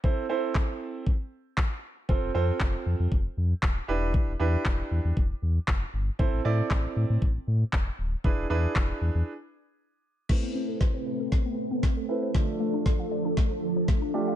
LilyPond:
<<
  \new Staff \with { instrumentName = "Grand piano" } { \time 4/4 \key a \minor \tempo 4 = 117 <c' e' a' c''>8 <c' e' a' c''>4. r2 | <c' f' a' c''>8 <c' f' a' c''>4. r4. <d' e' g' b'>8~ | <d' e' g' b'>8 <d' e' g' b'>4. r2 | <c' e' a' c''>8 <c' e' a' d''>4. r2 |
<d' e' gis' b'>8 <d' e' gis' b'>4. r2 | <c' e' a' b'>4. r2 <c' e' a' b'>8 | <a d' a'>4. r2 <a d' f' g'>8 | }
  \new Staff \with { instrumentName = "Synth arpeggio sound" } { \time 4/4 \key a \minor r1 | r1 | r1 | r1 |
r1 | a16 b16 c'16 a'16 b'16 c''16 b'16 a'16 c'16 b16 r16 b16 c'16 a'16 b'16 c''16 | d16 f16 a16 d'16 d''16 f''16 d''16 d'16 a16 f16 r16 f16 a16 d'16 d''16 f''16 | }
  \new Staff \with { instrumentName = "String machine" } { \time 4/4 \key a \minor r1 | r1 | r1 | r1 |
r1 | <a c' b'>1 | <f d' a'>1 | }
  \new Staff \with { instrumentName = "Sub bass" } { \clef bass \time 4/4 \key a \minor r1 | f,,16 f,,16 f,8 f,,8 f,16 f,16 f,,8 f,8 d,,8 e,,8~ | e,,16 e,,16 e,8 e,,8 e,16 e,16 e,,8 e,8 f,,8 g,,8 | a,,16 a,,16 a,8 a,,8 a,16 a,16 a,,8 a,8 e,,8 d,,8 |
e,,16 e,,16 e,8 e,,8 e,16 e,16 r2 | r1 | r1 | }
  \new DrumStaff \with { instrumentName = "Drums" } \drummode { \time 4/4 bd4 <hc bd>4 bd4 <hc bd>4 | bd4 <hc bd>4 bd4 <hc bd>4 | bd4 <hc bd>4 bd4 <hc bd>4 | bd4 <hc bd>4 bd4 <hc bd>4 |
bd4 <hc bd>4 r4 r4 | <cymc bd sn>4 <bd sn>4 <bd sn>4 <bd sn>4 | <bd sn>4 <bd sn>4 <bd sn>4 <bd sn>4 | }
>>